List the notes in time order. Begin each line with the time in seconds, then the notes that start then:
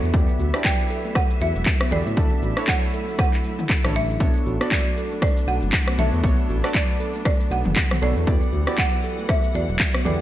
Already playing: B3 D4 F#4 A4 C#5 E5
0.03 E2 B3, shaker
0.14 E2 E3 B3 E4 F#4 G4 D5 E5, kick, shaker
0.29 shaker
0.39 D2 F#4, shaker
0.54 B3 D4 E4 G4 D5, cross-stick, shaker
0.65 F#3 G5, kick, clap, shaker
0.80 shaker
0.90 A4, shaker
1.05 A3, shaker
1.15 F#5, kick, cross-stick, shaker
1.30 shaker
1.41 E2 F#4 E5, shaker
1.55 E1 F#3, shaker
1.66 kick, clap, shaker
1.81 B3, cross-stick, shaker
1.91 E2 B3 E4 F#4 G4 A4 D5, mid tom, shaker
2.07 A2 B3, shaker
2.17 D2 D3 A3 B3 D4 E4 F#4 A4 D5, kick, shaker
2.32 shaker
2.42 A1 F#4, shaker
2.57 D4 E4 F#4 A4 C#5, cross-stick, shaker
2.67 F#3 F#5, kick, clap, shaker
2.83 shaker
2.94 A4, shaker
3.08 A3, shaker
3.19 F#5, kick, cross-stick, shaker
3.34 clap, shaker
3.44 F#3, shaker
3.59 E4, mid tom, shaker
3.69 kick, clap, shaker
3.84 A1 D4 E4 F#4 A4 C#5, cross-stick, mid tom, shaker
3.95 F#3 E5, shaker
4.10 E4, shaker
4.20 B1 A3 B3 D4 F#4 A4 C#5, kick, shaker
4.36 shaker
4.46 A1 F#4, shaker
4.61 B3 D4 F#4 A4 D5, cross-stick, shaker
4.71 F#3 D5, kick, clap, shaker
4.87 shaker
4.97 A4, shaker
5.12 A3, shaker
5.22 D5, kick, cross-stick, shaker
5.37 shaker
5.47 B1 F#4 F#5, shaker
5.62 F#1 F#3, shaker
5.73 kick, clap, shaker
5.88 B3, cross-stick, shaker
5.98 B1 B3 D4 F#4 A4 C#5 E5, mid tom, shaker
6.13 E2 B3, shaker
6.23 B1 B3 D4 F#4 A4 C#5, kick, shaker
6.39 shaker
6.49 A1 F#4, shaker
6.64 B3 D4 F#4 A4 D5, cross-stick, shaker
6.75 F#3 D5, kick, clap, shaker
6.90 shaker
7.00 A4, shaker
7.15 A3, shaker
7.25 D5, kick, cross-stick, shaker
7.40 shaker
7.51 B1 F#4 F#5, shaker
7.65 F#1 F#3, mid tom, shaker
7.76 kick, clap, shaker
7.91 B3, cross-stick, mid tom, shaker
8.02 B1 B3 D4 F#4 A4 C#5 D5, shaker
8.17 E2 B3, shaker
8.26 E2 E3 B3 E4 F#4 G4 D5 F#5, kick, shaker
8.42 shaker
8.53 D2 F#4, shaker
8.67 B3 E4 F#4 G4 D5, cross-stick, shaker
8.78 F#3 F#5, kick, clap, shaker
8.93 shaker
9.04 A4, shaker
9.19 A3, shaker
9.29 E5, kick, cross-stick, shaker
9.44 shaker
9.54 E2 F#4 D5, shaker
9.69 E1 F#3, shaker
9.79 kick, clap, shaker
9.94 B3, cross-stick, shaker
10.05 E2 B3 E4 F#4 G4 A4 D5, mid tom, shaker